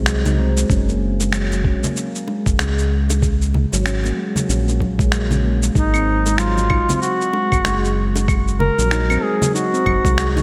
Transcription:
Already playing: analog synth bass C2
0.06 handpan F#3, finger snap, cabasa
0.25 handpan D#4, low conga, cabasa
0.38 handpan C4
0.57 handpan G#3, cabasa
0.70 analog synth bass F#1, handpan C#4, kick, cabasa
0.89 handpan A#3, cabasa
1.20 handpan G#3, high bongo, cabasa
1.33 handpan F#3, finger snap, cabasa
1.52 high conga, cabasa
1.64 handpan C#4, kick
1.83 handpan A#3, low conga, cabasa
1.97 cabasa
2.15 cabasa
2.28 handpan G#3, high bongo
2.46 analog synth bass F#1, kick, cabasa
2.59 analog synth bass C#2, handpan G#3, finger snap, high bongo, cabasa
2.79 cabasa
3.10 high bongo, cabasa
3.22 kick, cabasa
3.42 cabasa
3.54 low conga
3.72 analog synth bass G#1, handpan F#3, high bongo, cabasa
3.86 handpan C#4, finger snap, cabasa
4.04 handpan A#3, high bongo, high conga, cabasa
4.17 handpan G#3
4.36 handpan F#3, low conga, cabasa
4.49 analog synth bass A#1, handpan C#4, cabasa
4.68 handpan A#3, cabasa
4.80 kick, high conga
4.99 handpan G#3, kick, high bongo, cabasa
5.12 handpan F#3, finger snap, cabasa
5.31 handpan C#4, low conga, cabasa
5.44 handpan A#3
5.63 handpan G#3, cabasa
5.75 analog synth bass G#1, handpan D#4, duduk D#4, kick, cabasa
5.94 handpan C4, cabasa, claves
6.26 handpan G#3, high bongo, cabasa
6.38 handpan F#3, duduk F4, finger snap, cabasa
6.58 high conga, cabasa
6.70 handpan D#4, kick, claves
6.89 handpan C4, low conga, cabasa
7.01 duduk F#4, cabasa
7.21 cabasa
7.33 handpan G#3, high bongo
7.52 analog synth bass G#1, kick, cabasa, claves
7.65 analog synth bass F#1, handpan G#3, finger snap, high bongo, cabasa
7.85 cabasa
8.16 high bongo, cabasa
8.28 kick, cabasa, claves
8.48 cabasa
8.60 duduk A#4, low conga
8.78 analog synth bass A#1, handpan F#3, high bongo, cabasa
8.91 handpan D#4, finger snap, cabasa
9.10 handpan C4, high bongo, high conga, cabasa, claves
9.23 handpan G#3, duduk G#4
9.42 handpan F#3, low conga, cabasa
9.55 handpan D#4, duduk F#4, cabasa
9.73 handpan C4, cabasa
9.86 analog synth bass F#1, kick, high conga, claves
10.05 analog synth bass C2, handpan G#3, kick, high bongo, cabasa
10.18 handpan F#3, finger snap, cabasa
10.36 handpan D#4, low conga, cabasa

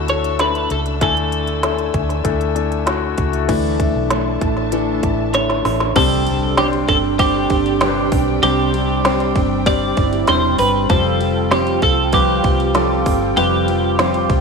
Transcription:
Already playing: fingered electric bass D2, grand piano D3 A3 D4 E4 F#4 A4 B4, string section D4 E5 A5 E6
0.08 grand piano A3 D4 E4 A4, clean electric guitar C#5, closed hi-hat
0.24 closed hi-hat
0.39 grand piano A3 D4 E4 A4, clean electric guitar B4, snare, closed hi-hat
0.55 closed hi-hat
0.70 fingered electric bass C#2, clean electric guitar A4, closed hi-hat
0.86 closed hi-hat
1.01 fingered electric bass D2, grand piano D3 A3 D4 E4 G#5, clean electric guitar A4, string section G#5, kick, closed hi-hat
1.17 closed hi-hat
1.32 closed hi-hat
1.47 closed hi-hat
1.63 grand piano A3 D4 E4 A4, snare, closed hi-hat
1.78 closed hi-hat
1.94 fingered electric bass D2, kick, closed hi-hat
2.09 snare, closed hi-hat
2.24 fingered electric bass D2, grand piano A3 D4 E4 A4, kick, closed hi-hat
2.41 closed hi-hat
2.55 grand piano A3 D4 E4 A4, closed hi-hat
2.72 closed hi-hat
2.86 grand piano A3 D4 E4 F#4, snare, closed hi-hat
3.18 fingered electric bass C#2, kick, closed hi-hat
3.33 closed hi-hat
3.48 fingered electric bass D2, steel-string acoustic guitar D3 A3 D4 E4, grand piano E3 A3 D4, string section D4 A4 E5 A5, kick, closed hi-hat, crash
3.79 steel-string acoustic guitar A3 D4 E4, kick, closed hi-hat
3.95 fingered electric bass B1
4.10 steel-string acoustic guitar D3 A3 D4 E4, snare, closed hi-hat
4.41 fingered electric bass A1, steel-string acoustic guitar A3 D4 E4, kick, closed hi-hat
4.57 snare
4.72 steel-string acoustic guitar D3 A3 D4 E4, grand piano E3 A3 D4, closed hi-hat
5.03 fingered electric bass A1, steel-string acoustic guitar A3 D4 E4, kick, closed hi-hat
5.34 steel-string acoustic guitar D3 A3 D4 E4, clean electric guitar C#5, snare, closed hi-hat
5.50 snare
5.65 fingered electric bass A1, steel-string acoustic guitar A3 D4 E4, snare, open hi-hat
5.80 snare
5.96 fingered electric bass C2, steel-string acoustic guitar C3 G3 C4 D4 G4, grand piano C3 G3 C4 D4 G4 C5, french horn section D3 D4, string section C4 G4 D5 G5, clean electric guitar A4, kick, crash, ride, impact
6.27 steel-string acoustic guitar C4 D4 G4, ride
6.57 steel-string acoustic guitar C3 G3 C4 D4 G4, grand piano G3 C4 D4 G4 C5, clean electric guitar G4, snare, ride
6.73 ride
6.88 fingered electric bass G1, steel-string acoustic guitar C4 D4 G4, clean electric guitar A4, kick, ride
7.19 grand piano G3 C4 D4 G4 C5, steel-string acoustic guitar G3 C4 D4 G4, clean electric guitar G4, kick, ride
7.49 fingered electric bass G1, steel-string acoustic guitar C4 D4 G4, kick, ride
7.66 ride
7.81 steel-string acoustic guitar C3 G3 C4 D4 G4, grand piano G3 C4 D4 G4 B4, snare, ride
7.88 grand piano C5
8.11 fingered electric bass B1, steel-string acoustic guitar C4 D4 G4, kick, open hi-hat, ride
8.42 fingered electric bass C2, steel-string acoustic guitar C3 G3 C4 D4 G4, grand piano C3 G3 C4 D4 G4 C5, clean electric guitar G4, ride
8.73 steel-string acoustic guitar C4 D4 G4, ride
9.04 steel-string acoustic guitar C3 G3 C4 D4 G4, grand piano G3 C4 D4 G4 C5, snare, ride
9.20 ride
9.35 fingered electric bass G1, steel-string acoustic guitar C4 D4 G4, kick, ride
9.66 steel-string acoustic guitar G3 C4 D4 G4, grand piano G3 C4 D4 G4 C5, clean electric guitar D5, kick, ride
9.97 fingered electric bass G1, french horn section E3 E4, steel-string acoustic guitar C4 D4 G4, kick, ride
10.13 ride
10.27 fingered electric bass E1, steel-string acoustic guitar C3 G3 C4 D4 G4, grand piano G3 C4 D4 G4 C5, clean electric guitar C5, snare, ride
10.58 fingered electric bass G1, steel-string acoustic guitar C4 D4 G4, clean electric guitar B4, open hi-hat, ride
10.89 fingered electric bass F1, steel-string acoustic guitar F3 C4 F4 G4, french horn section F3 F4, grand piano G3 C4 F4 G4 C5, string section F4 G5, clean electric guitar A4, kick, ride
11.20 steel-string acoustic guitar C4 F4 G4, ride
11.51 steel-string acoustic guitar F3 C4 F4 G4, grand piano G3 C4 F4 G4 C5, clean electric guitar G4, snare, ride
11.67 ride
11.82 fingered electric bass C2, steel-string acoustic guitar C4 F4 G4, clean electric guitar A4, kick, ride
12.12 steel-string acoustic guitar F3 C4 F4 G4, grand piano G3 C4 F4 G4 B4, clean electric guitar G4, kick, ride
12.43 fingered electric bass C2, steel-string acoustic guitar C4 F4 G4, kick, ride
12.60 ride
12.75 steel-string acoustic guitar F3 C4 F4 G4, grand piano G3 C4 F4 G4 A4, snare, ride
13.05 fingered electric bass G1, steel-string acoustic guitar C4 F4 G4, kick, open hi-hat, ride
13.36 fingered electric bass F1, steel-string acoustic guitar F3 C4 F4 G4, grand piano G3 C4 F4 G4 B4, clean electric guitar G4, ride
13.67 steel-string acoustic guitar C4 F4 G4, ride
13.98 steel-string acoustic guitar F3 C4 F4 G4, grand piano G3 C4 F4 G4 C5, snare, ride
14.14 ride
14.29 fingered electric bass C2, steel-string acoustic guitar C4 F4 G4, kick, ride

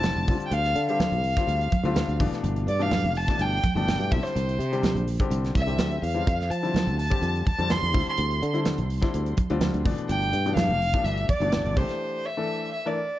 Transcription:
Already playing: fretless electric bass F1, grand piano D3 G3 C4 E4, violin A5
0.03 snare, closed hi-hat, high conga
0.16 fretless electric bass F1, closed hi-hat
0.28 fretless electric bass D2, grand piano D3 G3 C4 F4, kick, open hi-hat
0.40 muted fretless electric bass stroke, closed hi-hat
0.46 violin G5
0.51 fretless electric bass D2, violin F5, closed hi-hat, muted conga
0.64 snare, closed hi-hat
0.75 fretless electric bass D3, closed hi-hat
0.89 grand piano D3 G3 C4 G4, violin F5, closed hi-hat
1.00 snare, closed hi-hat, high conga
1.12 fretless electric bass C2, closed hi-hat
1.23 open hi-hat, muted conga
1.37 grand piano D3 G3 C4 F4, kick, snare, closed hi-hat
1.47 fretless electric bass D2, closed hi-hat, muted conga
1.61 closed hi-hat
1.72 kick, closed hi-hat, muted conga, high conga
1.84 fretless electric bass D2, grand piano D3 G3 C4 F4, closed hi-hat
1.96 snare, closed hi-hat, high conga
2.08 fretless electric bass D2, closed hi-hat
2.20 fretless electric bass G1, grand piano B2 E3 A3 D4, kick, open hi-hat
2.32 muted fretless electric bass stroke, snare, closed hi-hat
2.43 fretless electric bass G1, closed hi-hat, muted conga
2.56 closed hi-hat
2.67 fretless electric bass G2, violin D5, closed hi-hat
2.79 grand piano B2 E3 A3 D4, violin F5, closed hi-hat
2.91 snare, closed hi-hat, high conga
3.04 fretless electric bass F1, closed hi-hat
3.15 violin A5, open hi-hat, muted conga
3.28 grand piano B2 E3 A3 D4, kick, snare, closed hi-hat
3.39 fretless electric bass G1, violin G5, closed hi-hat, muted conga
3.52 closed hi-hat
3.64 kick, closed hi-hat, muted conga, high conga
3.75 fretless electric bass G1, grand piano B2 E3 A3 D4, violin G5, closed hi-hat
3.88 snare, closed hi-hat, high conga
3.99 fretless electric bass G2, closed hi-hat
4.11 fretless electric bass C2, grand piano D3 G3 C4 E4, violin E5, kick, open hi-hat
4.23 violin C5, snare, closed hi-hat
4.35 fretless electric bass C2, closed hi-hat, muted conga
4.49 closed hi-hat
4.59 fretless electric bass C3, closed hi-hat
4.72 grand piano D3 G3 C4 G4, closed hi-hat
4.83 snare, closed hi-hat, high conga
4.95 fretless electric bass A#1, closed hi-hat
5.07 open hi-hat, muted conga
5.20 grand piano D3 G3 C4 G4, kick, closed hi-hat
5.30 fretless electric bass C2, closed hi-hat, muted conga
5.44 snare, closed hi-hat
5.55 fretless electric bass C2, violin E5, kick, closed hi-hat, muted conga, high conga
5.66 grand piano D3 G3 C4 G4, closed hi-hat
5.78 fretless electric bass D2, snare, closed hi-hat, high conga
5.91 closed hi-hat
6.02 fretless electric bass E2, violin F5, open hi-hat
6.14 grand piano D3 G3 C4 E4, closed hi-hat
6.27 fretless electric bass F2, kick, closed hi-hat, muted conga
6.41 snare, closed hi-hat
6.50 fretless electric bass F3, violin A5, closed hi-hat
6.63 grand piano D3 G3 C4 E4, closed hi-hat
6.74 snare, closed hi-hat, high conga
6.87 fretless electric bass D2, closed hi-hat
6.99 violin A5, open hi-hat
7.10 grand piano D3 G3 C4 G4, kick
7.21 fretless electric bass F2, closed hi-hat, muted conga
7.35 closed hi-hat
7.46 violin A5, muted fretless electric bass stroke, kick, closed hi-hat, muted conga, high conga
7.58 fretless electric bass F2, grand piano D3 G3 C4 D4, closed hi-hat
7.70 violin C6, snare, closed hi-hat, high conga
7.82 fretless electric bass F2, closed hi-hat
7.93 fretless electric bass D2, grand piano D3 G3 C4 E4, kick, open hi-hat
8.06 violin C6, muted fretless electric bass stroke, closed hi-hat
8.18 fretless electric bass D2, closed hi-hat, muted conga
8.31 closed hi-hat
8.42 fretless electric bass D3, closed hi-hat
8.53 grand piano D3 G3 C4 E4, closed hi-hat
8.65 snare, closed hi-hat, high conga
8.78 fretless electric bass C2, closed hi-hat
8.90 open hi-hat, muted conga
9.01 grand piano D3 G3 C4 E4, kick, snare
9.14 fretless electric bass D2, closed hi-hat, muted conga
9.26 closed hi-hat
9.37 kick, closed hi-hat, muted conga, high conga
9.50 fretless electric bass D2, grand piano D3 G3 C4 F4, closed hi-hat
9.61 snare, closed hi-hat, high conga
9.74 fretless electric bass D2, closed hi-hat
9.85 fretless electric bass G1, grand piano B2 E3 A3 D4, kick, open hi-hat
9.98 closed hi-hat
10.08 fretless electric bass G1, violin G5, closed hi-hat, muted conga
10.22 closed hi-hat
10.33 fretless electric bass G2, closed hi-hat
10.46 grand piano B2 E3 A3 D4, closed hi-hat
10.56 violin F5, snare, closed hi-hat, high conga
10.69 fretless electric bass F1, closed hi-hat
10.81 open hi-hat, muted conga
10.94 grand piano B2 E3 A3 D4, kick, closed hi-hat
11.04 fretless electric bass G1, violin E5, closed hi-hat, muted conga
11.18 closed hi-hat
11.29 violin D5, kick, closed hi-hat, muted conga, high conga
11.40 fretless electric bass G1, grand piano B2 E3 A3 D4, closed hi-hat
11.52 snare, closed hi-hat, high conga
11.64 fretless electric bass G1, closed hi-hat
11.76 fretless electric bass C2, grand piano E3 A3 D4 G4, violin C5, kick, open hi-hat
11.89 muted fretless electric bass stroke, snare, closed hi-hat
12.25 violin E5
12.37 grand piano E3 A3 D4 A4
12.74 violin E5
12.85 grand piano E3 A3 D4 A#4, violin D5

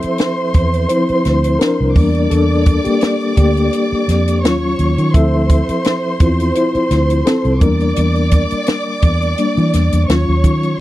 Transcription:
Already playing: reed electric piano F3 C4 E4 A4 E5, string section C5 C6
0.02 muted fingered electric bass stroke, closed hi-hat
0.18 snare, closed hi-hat
0.54 fingered electric bass E2, kick, closed hi-hat
0.74 closed hi-hat
0.89 reed electric piano F3 C4 E4 C5, closed hi-hat
1.09 muted fingered electric bass stroke, closed hi-hat
1.25 fingered electric bass D2, snare, closed hi-hat
1.44 closed hi-hat
1.59 reed electric piano D4 A#4, snare, closed hi-hat
1.80 fingered electric bass C2
1.95 fingered electric bass E2, reed electric piano G3 A#3 D4, string section D5 D6, kick, open hi-hat
2.15 closed hi-hat
2.30 fingered electric bass E2, reed electric piano D4 A4, closed hi-hat
2.66 kick, closed hi-hat
2.84 reed electric piano A#3 G4, muted fingered electric bass stroke, closed hi-hat
3.01 snare, closed hi-hat
3.21 closed hi-hat
3.37 fingered electric bass D2, reed electric piano A#3 G4, kick, closed hi-hat
3.57 closed hi-hat
3.73 closed hi-hat
3.92 muted fingered electric bass stroke
4.08 fingered electric bass F2, snare, closed hi-hat
4.28 closed hi-hat
4.43 fingered electric bass D#2, reed electric piano F#3 C#4 F4, string section C#5 C#6, snare, closed hi-hat
4.79 fingered electric bass D#2, closed hi-hat
4.98 fingered electric bass D#3, closed hi-hat
5.13 fingered electric bass D2, reed electric piano F3 C4 E4 A4 E5, string section C5 C6, kick, closed hi-hat
5.49 kick, closed hi-hat
5.69 muted fingered electric bass stroke, closed hi-hat
5.84 snare, closed hi-hat
6.20 fingered electric bass E2, reed electric piano C4 E4 F4, kick, closed hi-hat
6.40 closed hi-hat
6.55 reed electric piano E4 C5, closed hi-hat
6.75 muted fingered electric bass stroke, closed hi-hat
6.91 fingered electric bass D2, snare, closed hi-hat
7.10 closed hi-hat
7.26 reed electric piano C4 A4, snare, closed hi-hat
7.45 fingered electric bass C2, closed hi-hat
7.61 fingered electric bass E2, reed electric piano G3 A#3 D4 A#4, string section D5 D6, kick, closed hi-hat
7.80 closed hi-hat
7.96 fingered electric bass E2, closed hi-hat
8.15 closed hi-hat
8.31 kick, closed hi-hat
8.51 muted fingered electric bass stroke, closed hi-hat
8.66 snare, closed hi-hat
9.02 fingered electric bass E2, kick, closed hi-hat
9.22 closed hi-hat
9.38 reed electric piano G3 A#3 D4, closed hi-hat
9.57 fingered electric bass E3, closed hi-hat
9.73 fingered electric bass E2, snare, closed hi-hat
9.92 fingered electric bass E2, closed hi-hat
10.09 fingered electric bass D#2, reed electric piano F#3 C#4 F4, string section C#5 C#6, snare, closed hi-hat
10.29 fingered electric bass D#2
10.44 fingered electric bass D#3, kick, closed hi-hat
10.63 closed hi-hat

